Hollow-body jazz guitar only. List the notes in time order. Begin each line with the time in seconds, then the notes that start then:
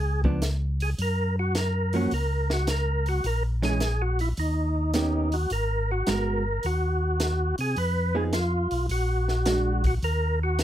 0.25 F3 B3 D4
1.94 F3 A#3 C#4
3.62 E3 G#3 C#4
4.94 D#3 B3 C#4 G4
6.08 G#3 B3 F#4 A#4
8.15 F3 B3 D#4 G#4
9.46 G#3 D4 F#4